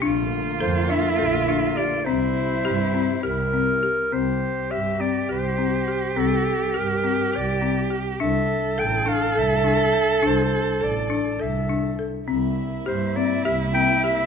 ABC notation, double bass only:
X:1
M:7/8
L:1/8
Q:1/4=103
K:Cmix
V:1 name="Double bass" clef=bass
B,,,2 F,,2 B,,,3 | C,,2 G,,2 C,,3 | C,,2 G,,2 C,,3 | C,,2 G,,2 C,,3 |
C,,2 A,,,2 C,,3 | C,,2 A,,,2 C,,3 | C,,2 G,,2 C,,3 |]